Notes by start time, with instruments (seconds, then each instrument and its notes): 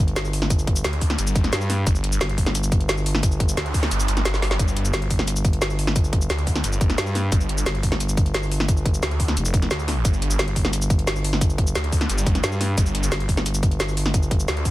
Already playing: fm bass G1
0.08 closed hi-hat
0.16 snare, closed hi-hat, cabasa
0.25 cabasa
0.33 open hi-hat
0.42 snare
0.50 kick, closed hi-hat, cabasa
0.59 cabasa
0.67 kick, closed hi-hat
0.76 cabasa
0.84 detuned saw bass D2, snare, closed hi-hat, cabasa
0.93 closed hi-hat
1.01 kick, open hi-hat, cabasa
1.10 snare, closed hi-hat
1.19 detuned saw bass G1, closed hi-hat, cabasa
1.27 cabasa
1.36 kick, closed hi-hat, cabasa
1.44 snare, closed hi-hat
1.53 fm bass G2, snare, closed hi-hat, cabasa
1.61 cabasa
1.70 snare, open hi-hat
1.87 detuned saw bass G1, kick, closed hi-hat, cabasa
1.95 cabasa
2.04 closed hi-hat
2.12 cabasa
2.21 fm bass G1, snare, closed hi-hat, cabasa
2.29 closed hi-hat
2.38 kick, open hi-hat, cabasa
2.46 snare, closed hi-hat
2.55 closed hi-hat, cabasa
2.63 cabasa
2.72 kick, closed hi-hat, cabasa
2.81 closed hi-hat
2.89 snare, closed hi-hat, cabasa
2.98 cabasa
3.06 open hi-hat
3.15 snare
3.23 kick, closed hi-hat, noise sweep, cabasa
3.32 cabasa
3.40 kick, closed hi-hat
3.49 cabasa
3.57 detuned saw bass D2, snare, closed hi-hat, cabasa
3.66 closed hi-hat
3.74 kick, open hi-hat, cabasa
3.83 snare, closed hi-hat
3.91 detuned saw bass G1, closed hi-hat, cabasa
4.00 cabasa
4.08 detuned saw bass G1, closed hi-hat, cabasa
4.17 snare, closed hi-hat
4.25 snare, closed hi-hat, cabasa
4.34 snare, cabasa
4.42 snare, open hi-hat
4.51 snare, closed hi-hat
4.59 detuned saw bass G1, kick, closed hi-hat, cabasa
4.68 cabasa
4.77 closed hi-hat
4.85 cabasa
4.94 fm bass G1, snare, closed hi-hat, cabasa
5.02 closed hi-hat
5.10 kick, open hi-hat, cabasa
5.19 snare, closed hi-hat
5.28 closed hi-hat, cabasa
5.36 cabasa
5.45 kick, closed hi-hat, cabasa
5.53 closed hi-hat
5.62 snare, closed hi-hat, cabasa
5.70 cabasa
5.79 open hi-hat
5.87 snare
5.96 kick, closed hi-hat, cabasa
6.04 cabasa
6.13 kick, closed hi-hat
6.21 cabasa
6.30 detuned saw bass D2, snare, closed hi-hat, cabasa
6.38 closed hi-hat
6.47 kick, open hi-hat, cabasa
6.56 snare, closed hi-hat
6.64 detuned saw bass G1, closed hi-hat, cabasa
6.73 cabasa
6.81 kick, closed hi-hat, cabasa
6.90 snare, closed hi-hat
6.98 fm bass G2, snare, closed hi-hat, cabasa
7.07 cabasa
7.15 snare, open hi-hat
7.32 detuned saw bass G1, kick, closed hi-hat, cabasa
7.41 cabasa
7.49 closed hi-hat
7.58 cabasa
7.66 fm bass G1, snare, closed hi-hat, cabasa
7.75 closed hi-hat
7.83 kick, open hi-hat, cabasa
7.92 snare, closed hi-hat
8.00 closed hi-hat, cabasa
8.09 cabasa
8.17 kick, closed hi-hat, cabasa
8.26 closed hi-hat
8.34 snare, closed hi-hat, cabasa
8.43 cabasa
8.52 open hi-hat
8.60 snare
8.68 kick, closed hi-hat, cabasa
8.77 cabasa
8.86 kick, closed hi-hat
8.94 cabasa
9.03 detuned saw bass D2, snare, closed hi-hat, cabasa
9.11 closed hi-hat
9.20 kick, open hi-hat, cabasa
9.28 snare, closed hi-hat
9.37 fm bass F1, closed hi-hat, cabasa
9.45 cabasa
9.54 kick, closed hi-hat, cabasa
9.62 snare, closed hi-hat
9.71 detuned saw bass D2, snare, closed hi-hat, cabasa
9.79 cabasa
9.88 snare, open hi-hat
10.05 detuned saw bass G1, kick, closed hi-hat, cabasa
10.14 cabasa
10.22 closed hi-hat
10.31 cabasa
10.39 fm bass G1, snare, closed hi-hat, cabasa
10.48 closed hi-hat
10.56 kick, open hi-hat, cabasa
10.65 snare, closed hi-hat
10.73 closed hi-hat, cabasa
10.82 cabasa
10.90 kick, closed hi-hat, cabasa
10.99 closed hi-hat
11.07 snare, closed hi-hat, cabasa
11.16 cabasa
11.24 open hi-hat
11.33 snare
11.41 kick, closed hi-hat, cabasa
11.50 cabasa
11.58 kick, closed hi-hat
11.67 cabasa
11.75 detuned saw bass D2, snare, closed hi-hat, cabasa
11.84 closed hi-hat
11.92 kick, open hi-hat, cabasa
12.01 snare, closed hi-hat
12.10 detuned saw bass G1, closed hi-hat, cabasa
12.18 cabasa
12.26 kick, closed hi-hat, cabasa
12.35 snare, closed hi-hat
12.43 fm bass G2, snare, closed hi-hat, cabasa
12.52 cabasa
12.61 snare, open hi-hat
12.78 detuned saw bass G1, kick, closed hi-hat, cabasa
12.86 cabasa
12.95 closed hi-hat
13.03 cabasa
13.12 fm bass G1, snare, closed hi-hat, cabasa
13.20 closed hi-hat
13.29 kick, open hi-hat, cabasa
13.37 snare, closed hi-hat
13.46 closed hi-hat, cabasa
13.54 cabasa
13.63 kick, closed hi-hat, cabasa
13.71 closed hi-hat
13.80 snare, closed hi-hat, cabasa
13.89 cabasa
13.97 open hi-hat
14.06 snare
14.14 kick, closed hi-hat, cabasa
14.23 cabasa
14.31 kick, closed hi-hat
14.40 cabasa
14.48 detuned saw bass D2, snare, closed hi-hat, cabasa
14.57 closed hi-hat
14.65 kick, open hi-hat, cabasa